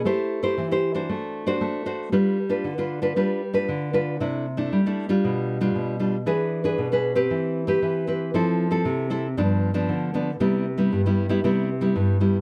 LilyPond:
\new Staff \with { instrumentName = "Nylon-string guitar" } { \time 4/4 \key c \major \tempo 4 = 116 << { <e' g' c''>8. <e' g' c''>8 <e' g' c''>8 <d' fis' c''>4 <d' fis' c''>8. <d' fis' c''>8 | <d' f' b'>8 r16 <d' f' b'>8 <d' f' b'>8 <d' f' b'>16 <d' f' b'>8 r16 <d' f' b'>8. <d' f' b'>8 | <a d' e'>8 r16 <a d' e'>8 <a d' e'>8 <g d' f'>4 <g d' f'>8. <g d' f'>16 r16 | <d' gis' b'>8. <d' gis' b'>8 <d' gis' b'>8 <c' g' b'>4 <c' g' b'>8. <c' g' b'>8 |
<c' e' a'>8. <c' e' a'>8. <c' e' a'>16 r16 <f b d'>8. <f b d'>8. <f b d'>16 r16 | <g b e'>8 r16 <g b e'>8 <g b e'>8 <g b e'>16 <g b e'>8 r16 <g b e'>8. <g b e'>16 r16 | } \\ { a4 e4 a4 a4 | g4 d4 g4 d4 | c4 g4 b,4 b,4 | e4 b,4 e4 e4 |
f4 c4 g,4 d4 | c4 g,4 c4 g,4 | } >> }